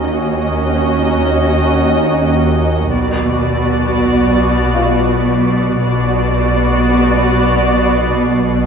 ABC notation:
X:1
M:4/4
L:1/8
Q:1/4=83
K:Cblyd
V:1 name="Violin section"
e8 | =d8 | =d8 |]
V:2 name="Felt piano"
z2 d6 | z4 z [Ff]3- | [Ff]3 z4 z |]
V:3 name="Viola section"
[DG]8 | [=B,^F]8 | [=B,^F]8 |]
V:4 name="Cello section" clef=bass
E,,8 | =B,,8 | =B,,8 |]
V:5 name="Double bass section" clef=bass
E,,8 | =B,,,8 | =B,,,8 |]
V:6 name="Synth drone" clef=bass
E,,8 | =B,,,8 | =B,,,8 |]